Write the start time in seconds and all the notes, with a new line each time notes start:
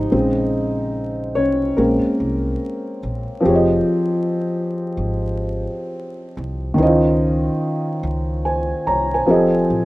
Already playing: C3 F3 A#3 C4 D#4 D#5
0.10 A#1 C#3 G#3 C4
1.35 C2 C#4 C#5
1.77 A#1 G#3 A#3 C4 C#4 A#4
2.06 muted upright bass stroke
2.20 C2
3.03 A#1
3.40 F3 C4
3.45 F1 G4 G#4
3.49 C#5
3.55 D#5
4.97 G#1
6.37 C2
6.74 D#3 C#4
6.78 C#2 E4 C5
6.82 F4 D#5
8.03 C#2
8.45 C5 G#5
8.87 C2 C#5 A#5
9.14 C5 G#5
9.26 F1 F3 C4 G4 A4
9.30 D#5
9.70 A1